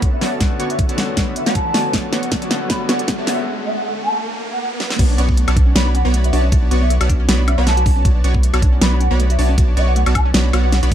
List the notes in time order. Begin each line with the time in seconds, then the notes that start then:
Already playing: D3 A3 B3 C#4 F#4 A4 C#5 D5 B5, riser
0.02 kick, closed hi-hat
0.13 E5
0.21 B3 F#4 C#5 D5 E5 A5, snare, open hi-hat
0.39 D3 A3 B3 C#4 F#4 C#5 D5 A5, kick, snare, closed hi-hat
0.43 F#4
0.60 B3 F#4 C#5 D5 C#6, closed hi-hat
0.70 E5, closed hi-hat
0.79 kick, closed hi-hat
0.89 B3 F#4 C#5 D5 A5, closed hi-hat
0.96 D3 A3 B3 C#4 F#4, snare, closed hi-hat
1.17 B3 F#4 C#5 D5 B5, kick, snare, closed hi-hat
1.36 E5, closed hi-hat
1.46 B3 F#4 C#5 D5 F#5 B5, snare, closed hi-hat
1.55 A5, kick, closed hi-hat
1.74 B3 F#4 C#5 D5 A5, snare, open hi-hat
1.91 D3 A3 B3 C#4 F#4 C#5 D5 A5, kick, snare, closed hi-hat
1.95 F#4
2.12 B3 F#4 C#5 D5 C#6, snare, closed hi-hat
2.23 closed hi-hat
2.32 kick, snare, closed hi-hat
2.42 B3 F#4 C#5 D5 A5, closed hi-hat
2.49 D3 A3 B3 C#4, snare, closed hi-hat
2.53 F#4
2.68 D3 A3 B3 C#4 F#4 C#5 D5 A5 B5, kick, snare, closed hi-hat
2.72 F#4
2.89 B3 F#4 C#5 D5 F#5 C#6, snare, closed hi-hat
2.99 closed hi-hat
3.08 kick, snare, closed hi-hat
3.18 B3 F#4 C#5 D5 E5 A5
3.25 D3 A3 B3 C#4 F#4 E5, snare, open hi-hat
3.65 E5
3.75 F#5
3.84 F#5
4.03 A5
4.52 F#5
4.61 F#5
4.80 snare
4.90 snare
4.99 B1 B3 F#4 C#5 D5 A5, kick, closed hi-hat, crash
5.09 D4
5.18 B1 B3 C#4 F#4 C#5 D5 C#6, closed hi-hat
5.29 B3, kick
5.37 A3, closed hi-hat
5.48 B1 B3 F#4 C#5 D5 A5, closed hi-hat, high woodblock
5.56 D4, kick, closed hi-hat
5.66 C#4
5.75 B1 B3 F#4 C#5 D5 B5, snare, closed hi-hat
5.86 D4
5.94 C#4 F#5, closed hi-hat
6.05 B1 B3 F#4 C#5 D5 B5
6.14 A3, closed hi-hat
6.24 F#4 E5, closed hi-hat
6.33 B1 B3 D4 F#4 C#5 D5 E5 A5, open hi-hat
6.43 C#4
6.52 B1 B3 F#4 C#5 D5 A5, kick, closed hi-hat
6.62 D4
6.71 B1 B3 C#4 F#4 C#5 D5 C#6, closed hi-hat
6.81 B3 E5
6.90 A3, closed hi-hat
7.00 B1 B3 F#4 C#5 D5 A5, closed hi-hat, high woodblock
7.09 D4, kick, closed hi-hat
7.20 C#4
7.29 B1 B3 F#4 C#5 D5 B5, snare, closed hi-hat
7.39 D4
7.48 C#4 E5, closed hi-hat, high woodblock
7.58 B1 B3 F#4 C#5 D5 F#5 B5
7.67 A3 A5, snare, closed hi-hat
7.77 F#4, closed hi-hat
7.86 B1 B3 D4 F#4 C#5 D5 A5, kick, open hi-hat
7.96 C#4
8.05 B1 B3 F#4 C#5 D5 A5, kick, closed hi-hat
8.15 D4
8.24 B1 B3 C#4 F#4 C#5 D5 C#6, closed hi-hat
8.34 B3, kick
8.43 A3, closed hi-hat
8.53 B1 B3 F#4 C#5 D5 A5, closed hi-hat, high woodblock
8.62 D4, kick, closed hi-hat
8.73 C#4
8.81 B1 B3 F#4 C#5 D5 B5, snare, closed hi-hat
8.92 D4
9.00 C#4 F#5, closed hi-hat
9.11 B1 B3 F#4 C#5 D5 B5
9.19 A3, closed hi-hat
9.30 F#4 E5, closed hi-hat
9.39 B1 B3 D4 F#4 C#5 D5 E5 A5, open hi-hat
9.49 C#4
9.58 B1 B3 F#4 C#5 D5 A5, kick, closed hi-hat
9.68 D4
9.77 B1 B3 C#4 F#4 C#5 D5 E5 C#6, closed hi-hat
9.87 B3 F#5
9.96 A3 F#5, closed hi-hat
10.06 B1 B3 F#4 C#5 D5 A5, closed hi-hat, high woodblock
10.15 D4 A5, kick, closed hi-hat, high woodblock
10.26 C#4
10.34 B1 B3 F#4 C#5 D5 B5, snare, closed hi-hat
10.45 D4
10.53 B1 B3 F#4 C#5 D5 F#5, closed hi-hat, high woodblock
10.64 B3 F#5
10.73 C#4 F#5, snare, closed hi-hat
10.83 B1 B3 D4 F#4 C#5 D5 B5, closed hi-hat